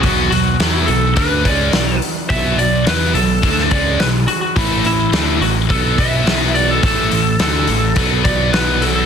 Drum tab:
HH |o-o-o-o-o-o-o-o-|o-o-o-o-o-o-o-o-|o-o-o-o-o-o-o-o-|o-o-o-o-o-o-o-o-|
SD |----o-------o---|----o----o--o---|----o-------o---|----o-------o---|
BD |o-------o-o-----|o-------o-o-----|o-------o-o-----|o-------o-o-----|